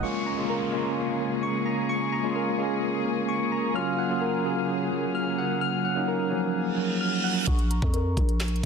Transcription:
0.02 string section C#3 G#3 A#3 G#4, tine electric piano G#3 A#3 C#4 F4, synth keys C#6, downlifter
0.26 synth keys A#5
0.37 tine electric piano G#3 A#3 C#4 F4
0.50 synth keys A#4
0.72 tine electric piano G#3 A#3 C#4 F4
1.20 synth keys A#3
1.43 synth keys C#6
1.66 synth keys A#5
1.89 synth keys C#6
2.12 synth keys A#5
2.23 tine electric piano G#3 A#3 C#4 F4
2.36 synth keys A#4
2.58 tine electric piano G#3 A#3 C#4 G#4
3.05 synth keys A#3
3.28 synth keys C#6
3.52 synth keys A#5
3.74 string section C#3, tine electric piano F#3 A#3 C#4 F4, synth keys F6
3.98 synth keys F#5
4.09 tine electric piano F#3 A#3 C#4 F4
4.21 synth keys A#4
4.44 tine electric piano F#3 A#3 C#4 G#4
4.92 synth keys F#3
5.15 synth keys F6
5.38 synth keys F#5
5.61 synth keys F6
5.85 synth keys F#5
5.95 tine electric piano F#3 A#3 C#4 D#4
6.08 synth keys A#4
6.30 tine electric piano F3 F#3 A#3 C#4
6.54 reverse cymbal
6.78 synth keys F#3
7.01 synth keys F6
7.24 synth keys F#5
7.47 808-style bass A#1, synth keys C#6, kick, closed hi-hat
7.59 closed hi-hat
7.70 synth keys A#5, closed hi-hat
7.82 808-style bass F2, kick
7.94 synth keys A#4, closed hi-hat
8.17 808-style bass A#1, kick, closed hi-hat
8.29 closed hi-hat
8.40 snare, clap, closed hi-hat
8.48 closed hi-hat
8.56 closed hi-hat

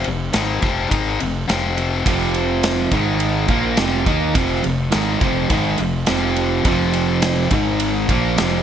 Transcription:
0.04 fingered electric bass F1, overdriven electric guitar F2 C3, ride
0.33 fingered electric bass G#1, overdriven electric guitar G#2 D#3 G#3, snare, ride
0.61 fingered electric bass F1, overdriven electric guitar F2 C3 F3, kick, ride
0.89 fingered electric bass G#1, overdriven electric guitar G#2 D#3 G#3, kick, ride
1.20 fingered electric bass F1, overdriven electric guitar F2 C3, ride
1.48 fingered electric bass F1, overdriven electric guitar F2 C3 F3, snare, ride
1.78 ride
2.06 fingered electric bass F1, overdriven electric guitar F2 C3 F3, kick, ride
2.34 ride
2.63 snare, ride
2.92 fingered electric bass G#1, overdriven electric guitar G#2 D#3 G#3, kick, ride
3.20 ride
3.48 fingered electric bass A#1, overdriven electric guitar A#2 F3 A#3, kick, ride
3.77 fingered electric bass F1, overdriven electric guitar F2 C3 F3, snare, ride
4.06 fingered electric bass D#2, overdriven electric guitar D#3 A#3 D#4, kick, ride
4.34 fingered electric bass F1, overdriven electric guitar F2 C3 F3, kick, ride
4.64 fingered electric bass F1, overdriven electric guitar F2 C3, ride
4.92 fingered electric bass G#1, overdriven electric guitar G#2 D#3 G#3, snare, ride
5.21 fingered electric bass F1, overdriven electric guitar F2 C3 F3, kick, ride
5.50 fingered electric bass G#1, overdriven electric guitar G#2 D#3 G#3, kick, ride
5.78 fingered electric bass F1, overdriven electric guitar F2 C3, ride
6.06 fingered electric bass F1, overdriven electric guitar F2 C3 F3, snare, ride
6.36 ride
6.65 fingered electric bass F1, overdriven electric guitar F2 C3 F3, kick, ride
6.93 ride
7.22 snare, ride
7.51 fingered electric bass G#1, overdriven electric guitar G#2 D#3 G#3, kick, ride
7.80 ride
8.09 fingered electric bass A#1, overdriven electric guitar A#2 F3 A#3, kick, ride
8.38 fingered electric bass F1, overdriven electric guitar F2 C3 F3, snare, ride

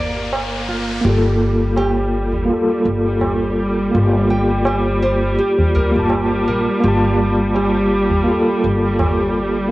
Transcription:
Already playing: upright bass G1, tine electric piano A#3 F4 A4, string section A#3, nylon-string guitar D5, riser
0.33 tabla na
0.68 nylon-string guitar F4
1.01 upright bass G1, string section G3, tine electric piano A#3, nylon-string guitar G4
1.05 tine electric piano F4 A4
1.76 nylon-string guitar G4, tabla na
2.32 tabla ge
2.45 tine electric piano A#3
2.49 tine electric piano F4 A4
2.85 upright bass G1
3.20 tabla na, tabla ge
3.91 upright bass G1, tine electric piano A#3 F4
3.98 tine electric piano G4
4.30 nylon-string guitar G5
4.65 nylon-string guitar G4, tabla na
5.03 nylon-string guitar C5
5.39 nylon-string guitar G4
5.59 tabla ge
5.75 upright bass D2, nylon-string guitar A#4
5.92 tine electric piano A#3 F4, tabla ge
5.96 upright bass G1, tine electric piano A5
6.10 tabla na
6.48 upright bass A#1, nylon-string guitar A#4
6.80 upright bass G1, tine electric piano A#3, nylon-string guitar G4
6.84 tine electric piano F4 A5
7.55 nylon-string guitar G4, tabla na
8.10 tabla ge
8.24 tine electric piano A#3 F4
8.32 tine electric piano A4
8.64 upright bass G1
8.99 tabla na, tabla ge

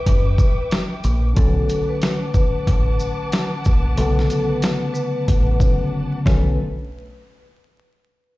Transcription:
Already playing: vibraphone B4, string section B4 E5 G5 D6
0.06 fingered electric bass F#1, kick, closed hi-hat
0.38 kick, shaker
0.71 snare, closed hi-hat
1.04 fingered electric bass A#1, closed hi-hat, shaker
1.34 fingered electric bass B1, tine electric piano D3 F#3 A3, vibraphone A4, string section B4 F#5 A5 D6, kick, closed hi-hat
1.39 tine electric piano C#4
1.69 closed hi-hat, shaker
1.89 vibraphone B4
2.02 snare, closed hi-hat
2.34 vibraphone B4, kick, shaker
2.67 fingered electric bass A1, kick, closed hi-hat
3.00 shaker
3.32 snare, closed hi-hat
3.65 fingered electric bass A#1, kick, shaker
3.95 fingered electric bass B1, tine electric piano C#3 F#3 A3, vibraphone A4, closed hi-hat
4.00 tine electric piano D3 B3
4.19 snare
4.30 closed hi-hat, shaker
4.49 vibraphone B4
4.62 snare, closed hi-hat
4.94 vibraphone B4, shaker
5.28 fingered electric bass A1, kick, closed hi-hat
5.60 tine electric piano C#3 F#3 A3 C#4, kick, shaker
5.66 tine electric piano D3
6.26 fingered electric bass B1, string section B2 B3 A4 B4, tine electric piano D3 F#3 A3 C#4, vibraphone B4, kick, snare

